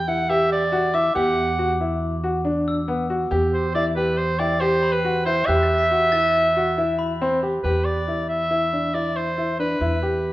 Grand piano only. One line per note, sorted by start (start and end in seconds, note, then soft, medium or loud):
0.08 0.24 E4 medium
0.30 0.61 G4 medium
0.72 0.88 F#4 medium
0.94 1.10 E4 medium
1.15 1.47 G4 medium
1.59 1.75 F#4 medium
1.81 2.13 E4 medium
2.24 2.40 F#4 medium
2.45 2.77 D4 medium
2.88 3.04 B3 medium
3.10 3.26 F#4 medium
3.31 3.63 G4 medium
3.75 3.91 E4 medium
3.96 4.28 G4 medium
4.40 4.56 E4 medium
4.61 4.93 G4 medium
5.05 5.21 F#4 medium
5.26 5.42 E4 medium
5.48 5.80 G4 medium
5.91 6.07 F#4 medium
6.13 6.45 E4 medium
6.56 6.72 F#4 medium
6.78 7.10 E4 medium
7.22 7.37 C4 medium
7.43 7.59 G4 medium
7.65 7.97 G4 medium
8.08 8.40 E4 medium
8.50 8.67 E4 medium
8.73 8.89 D4 medium
8.94 9.26 E4 medium
9.38 9.54 E4 medium
9.59 9.75 D4 medium
9.81 9.97 E4 medium
10.02 10.33 G4 medium